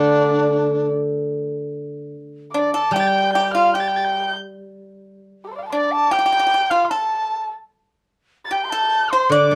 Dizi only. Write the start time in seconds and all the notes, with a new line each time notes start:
Already playing: D4
2.55 D5
2.73 A5
2.93 G5
3.33 G5
3.53 F5
3.73 G5
5.73 D5
5.92 A5
6.11 G5
6.70 F5
6.90 A5
8.51 G5
8.64 C6
8.70 A5
9.11 C6
9.32 D6